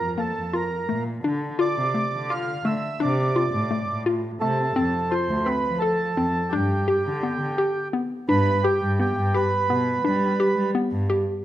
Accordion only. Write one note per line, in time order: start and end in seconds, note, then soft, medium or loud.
0.00 0.21 A#4 medium
0.19 0.55 A4 medium
0.54 1.03 A#4 medium
1.60 2.33 D5 medium
2.31 2.67 F5 medium
2.66 3.02 E5 medium
3.02 4.03 D5 medium
4.40 5.14 A4 medium
5.11 5.48 C5 medium
5.45 5.79 B4 medium
5.79 6.54 A4 medium
6.49 7.88 G4 medium
8.29 8.65 B4 loud
8.64 8.99 G4 medium
9.00 9.36 G4 medium
9.35 10.04 B4 medium
10.05 10.71 B4 medium